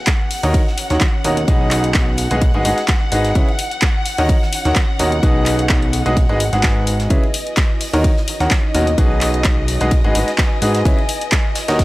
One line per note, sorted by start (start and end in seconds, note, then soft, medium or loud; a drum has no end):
0.00 1.86 C#5 medium
0.00 7.12 F#5 medium
0.07 kick loud
0.07 snare loud
0.07 clap loud
0.07 closed hi-hat medium
0.07 ride medium
0.31 open hi-hat loud
0.31 open hi-hat medium
0.43 0.57 D#2 loud
0.43 0.59 D#3 medium
0.43 0.59 D#4 medium
0.43 0.59 F#4 medium
0.43 0.59 A#4 medium
0.43 0.59 C#5 medium
0.43 0.59 D#5 loud
0.43 closed hi-hat soft
0.54 2.80 D#4 loud
0.54 kick loud
0.54 closed hi-hat medium
0.54 ride medium
0.67 snare soft
0.78 open hi-hat loud
0.78 ride medium
0.90 0.98 D#2 medium
0.90 1.00 D#3 medium
0.90 1.00 D#4 medium
0.90 1.00 F#4 medium
0.90 1.00 A#4 medium
0.90 1.00 C#5 medium
0.90 1.00 F#5 medium
0.90 snare soft
0.90 closed hi-hat medium
1.01 kick loud
1.01 snare loud
1.01 clap loud
1.01 closed hi-hat medium
1.01 ride medium
1.24 1.46 D#2 loud
1.24 1.36 B2 medium
1.24 1.36 D#4 medium
1.24 1.36 F#4 medium
1.24 1.36 A#4 medium
1.24 1.36 C#5 medium
1.24 1.36 D#5 medium
1.24 open hi-hat loud
1.24 ride medium
1.37 closed hi-hat soft
1.48 2.28 B1 medium
1.48 2.28 B2 medium
1.48 2.28 D#4 medium
1.48 2.28 F#4 medium
1.48 2.28 G#4 medium
1.48 2.28 B4 medium
1.48 2.28 D#5 medium
1.48 kick loud
1.48 closed hi-hat medium
1.48 ride medium
1.71 clap medium
1.71 open hi-hat loud
1.71 ride medium
1.84 closed hi-hat soft
1.90 3.74 B4 medium
1.90 3.74 G#5 medium
1.94 kick loud
1.94 snare loud
1.94 clap loud
1.94 closed hi-hat medium
1.94 ride medium
2.17 open hi-hat loud
2.17 ride medium
2.31 2.52 B1 loud
2.31 2.40 G#3 medium
2.31 2.40 D#4 medium
2.31 2.40 F#4 medium
2.31 2.40 G#4 medium
2.31 2.40 B4 medium
2.31 2.40 D#5 medium
2.31 closed hi-hat soft
2.31 ride soft
2.41 3.74 F#4 medium
2.41 kick loud
2.41 closed hi-hat medium
2.41 ride medium
2.54 2.63 G#1 medium
2.54 2.64 G#3 medium
2.54 2.64 D#4 medium
2.54 2.64 F#4 medium
2.54 2.64 G#4 medium
2.54 2.64 B4 medium
2.54 2.64 D#5 medium
2.54 ride soft
2.65 2.74 G#1 medium
2.65 2.76 G#3 medium
2.65 2.76 D#4 medium
2.65 2.76 F#4 medium
2.65 2.76 G#4 medium
2.65 2.76 B4 medium
2.65 2.76 D#5 medium
2.65 open hi-hat loud
2.65 ride medium
2.78 snare soft
2.78 closed hi-hat medium
2.88 kick loud
2.88 snare loud
2.88 clap loud
2.88 closed hi-hat medium
2.88 ride medium
3.12 3.33 G#1 loud
3.12 3.29 D#4 medium
3.12 3.29 F#4 medium
3.12 3.29 G#4 medium
3.12 3.29 B4 medium
3.12 3.29 D#5 medium
3.12 open hi-hat loud
3.12 ride medium
3.25 snare soft
3.25 closed hi-hat medium
3.35 3.44 C#2 medium
3.35 3.47 C#3 medium
3.35 3.47 E4 medium
3.35 3.47 G#4 medium
3.35 3.47 B4 medium
3.35 3.47 C#5 medium
3.35 3.47 E5 medium
3.35 kick loud
3.35 closed hi-hat medium
3.35 ride medium
3.48 ride soft
3.57 5.61 C#5 medium
3.57 open hi-hat loud
3.57 ride medium
3.71 closed hi-hat soft
3.82 kick loud
3.82 snare loud
3.82 clap loud
3.82 closed hi-hat medium
3.82 ride medium
4.06 open hi-hat loud
4.06 open hi-hat medium
4.18 4.32 D#2 medium
4.18 4.34 D#3 medium
4.18 4.34 D#4 medium
4.18 4.34 F#4 medium
4.18 4.34 A#4 medium
4.18 4.34 C#5 medium
4.18 4.34 D#5 loud
4.18 closed hi-hat soft
4.29 6.55 D#4 medium
4.29 kick loud
4.29 closed hi-hat medium
4.29 ride medium
4.42 snare soft
4.53 open hi-hat loud
4.53 ride medium
4.65 4.73 D#2 medium
4.65 4.75 D#3 medium
4.65 4.75 D#4 medium
4.65 4.75 F#4 medium
4.65 4.75 A#4 medium
4.65 4.75 C#5 medium
4.65 4.75 F#5 medium
4.65 snare soft
4.65 closed hi-hat soft
4.76 kick loud
4.76 snare loud
4.76 clap loud
4.76 closed hi-hat medium
4.76 ride medium
4.99 5.21 D#2 loud
4.99 5.11 B2 medium
4.99 5.11 D#4 medium
4.99 5.11 F#4 medium
4.99 5.11 A#4 medium
4.99 5.11 C#5 medium
4.99 5.11 D#5 medium
4.99 open hi-hat loud
4.99 ride medium
5.12 closed hi-hat soft
5.23 6.03 B1 medium
5.23 6.03 B2 medium
5.23 6.03 D#4 medium
5.23 6.03 F#4 medium
5.23 6.03 G#4 medium
5.23 6.03 B4 medium
5.23 6.03 D#5 medium
5.23 kick loud
5.23 closed hi-hat medium
5.23 ride medium
5.46 clap medium
5.46 open hi-hat loud
5.46 ride medium
5.59 7.49 G#5 medium
5.59 closed hi-hat soft
5.66 7.49 B4 medium
5.66 snare loud
5.66 clap loud
5.66 ride medium
5.70 kick loud
5.70 closed hi-hat medium
5.82 closed hi-hat soft
5.93 open hi-hat loud
5.93 ride medium
6.06 6.27 B1 loud
6.06 6.15 G#3 medium
6.06 6.15 D#4 medium
6.06 6.15 F#4 medium
6.06 6.15 G#4 medium
6.06 6.15 B4 medium
6.06 6.15 D#5 loud
6.06 closed hi-hat soft
6.06 ride soft
6.17 7.49 F#4 medium
6.17 kick loud
6.17 closed hi-hat medium
6.17 ride medium
6.29 6.50 G#1 medium
6.29 6.39 G#3 medium
6.29 6.39 D#4 medium
6.29 6.39 F#4 medium
6.29 6.39 G#4 medium
6.29 6.39 B4 medium
6.29 6.39 D#5 medium
6.29 ride soft
6.40 open hi-hat loud
6.40 ride medium
6.52 7.08 G#1 loud
6.52 7.08 G#3 medium
6.52 7.08 D#4 medium
6.52 7.08 F#4 medium
6.52 7.08 G#4 medium
6.52 7.08 B4 medium
6.52 7.08 F#5 medium
6.52 snare soft
6.52 closed hi-hat soft
6.63 kick loud
6.63 snare loud
6.63 clap loud
6.63 closed hi-hat medium
6.63 ride medium
6.87 open hi-hat loud
6.87 ride medium
7.00 snare soft
7.00 closed hi-hat soft
7.10 7.19 C#2 medium
7.10 7.22 C#3 medium
7.10 7.22 E4 medium
7.10 7.22 G#4 medium
7.10 7.22 B4 medium
7.10 7.22 C#5 medium
7.10 11.84 D#5 medium
7.10 7.22 E5 medium
7.10 kick loud
7.10 closed hi-hat medium
7.10 ride medium
7.23 ride soft
7.34 open hi-hat loud
7.34 ride medium
7.47 closed hi-hat soft
7.53 9.36 C#5 medium
7.57 kick loud
7.57 snare loud
7.57 clap loud
7.57 closed hi-hat medium
7.57 ride medium
7.81 open hi-hat loud
7.81 open hi-hat medium
7.93 8.07 D#2 loud
7.93 8.09 D#3 medium
7.93 8.09 D#4 medium
7.93 8.09 F#4 medium
7.93 8.09 A#4 medium
7.93 8.09 C#5 medium
7.93 8.09 D#5 loud
7.93 closed hi-hat soft
8.04 10.30 D#4 medium
8.04 kick loud
8.04 closed hi-hat medium
8.04 ride medium
8.17 snare soft
8.28 open hi-hat loud
8.28 ride medium
8.40 8.48 D#2 medium
8.40 8.50 D#3 medium
8.40 8.50 D#4 medium
8.40 8.50 F#4 medium
8.40 8.50 A#4 medium
8.40 8.50 C#5 medium
8.40 8.50 F#5 medium
8.40 snare soft
8.40 closed hi-hat soft
8.51 kick loud
8.51 snare loud
8.51 clap loud
8.51 closed hi-hat medium
8.51 ride medium
8.74 8.96 D#2 loud
8.74 8.86 B2 medium
8.74 8.86 D#4 medium
8.74 8.86 F#4 medium
8.74 8.86 A#4 medium
8.74 8.86 C#5 medium
8.74 8.86 D#5 medium
8.74 open hi-hat loud
8.74 ride medium
8.87 closed hi-hat soft
8.98 9.78 B1 medium
8.98 9.78 B2 medium
8.98 9.78 D#4 medium
8.98 9.78 F#4 medium
8.98 9.78 G#4 medium
8.98 9.78 B4 medium
8.98 9.78 D#5 medium
8.98 kick loud
8.98 closed hi-hat medium
8.98 ride medium
9.21 clap medium
9.21 open hi-hat loud
9.21 ride medium
9.34 11.24 B4 medium
9.34 closed hi-hat soft
9.40 11.24 G#5 loud
9.40 clap loud
9.40 ride medium
9.44 kick loud
9.44 snare loud
9.44 closed hi-hat medium
9.68 open hi-hat loud
9.68 ride medium
9.80 10.02 B1 loud
9.80 9.90 G#3 medium
9.80 9.90 D#4 medium
9.80 9.90 F#4 medium
9.80 9.90 G#4 medium
9.80 9.90 B4 medium
9.80 9.90 D#5 loud
9.80 closed hi-hat soft
9.80 ride soft
9.91 11.24 F#4 medium
9.91 kick loud
9.91 closed hi-hat medium
9.91 ride medium
10.04 10.13 G#1 loud
10.04 10.13 G#3 medium
10.04 10.13 D#4 medium
10.04 10.13 F#4 medium
10.04 10.13 G#4 medium
10.04 10.13 B4 medium
10.04 10.13 D#5 medium
10.04 ride soft
10.15 10.24 G#1 loud
10.15 10.26 G#3 medium
10.15 10.26 D#4 medium
10.15 10.26 F#4 medium
10.15 10.26 G#4 medium
10.15 10.26 B4 medium
10.15 10.26 D#5 medium
10.15 open hi-hat loud
10.15 ride medium
10.28 snare soft
10.28 closed hi-hat soft
10.38 kick loud
10.38 snare loud
10.38 clap loud
10.38 closed hi-hat medium
10.38 ride medium
10.62 10.83 G#2 loud
10.62 10.79 D#4 medium
10.62 10.79 F#4 medium
10.62 10.79 G#4 medium
10.62 10.79 B4 medium
10.62 10.79 D#5 medium
10.62 open hi-hat loud
10.62 ride medium
10.75 snare soft
10.75 closed hi-hat medium
10.85 10.94 C#2 loud
10.85 10.97 C#3 medium
10.85 10.97 E4 medium
10.85 10.97 G#4 medium
10.85 10.97 B4 medium
10.85 10.97 C#5 medium
10.85 10.97 E5 medium
10.85 kick loud
10.85 closed hi-hat medium
10.85 ride medium
10.98 ride soft
11.09 11.84 C#5 medium
11.09 open hi-hat loud
11.09 ride medium
11.21 closed hi-hat medium
11.32 kick loud
11.32 snare loud
11.32 clap loud
11.32 closed hi-hat medium
11.32 ride medium
11.55 snare medium
11.55 open hi-hat loud
11.55 ride medium
11.68 11.82 D#2 loud
11.68 11.84 D#3 medium
11.68 11.84 D#4 medium
11.68 11.84 F#4 medium
11.68 11.84 A#4 medium
11.68 11.84 C#5 medium
11.68 11.84 D#5 loud
11.68 snare loud
11.68 closed hi-hat medium
11.68 ride medium
11.79 kick loud
11.79 snare loud
11.79 closed hi-hat medium
11.79 ride medium